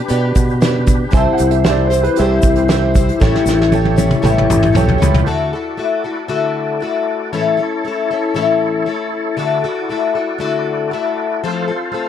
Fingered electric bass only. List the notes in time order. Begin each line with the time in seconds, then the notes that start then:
0.11 B2
0.36 B2
1.13 C2
1.40 C2
2.20 C2
2.43 C2
3.22 A1
3.46 A1
4.24 A1
4.50 A1
4.77 B1
5.02 C#2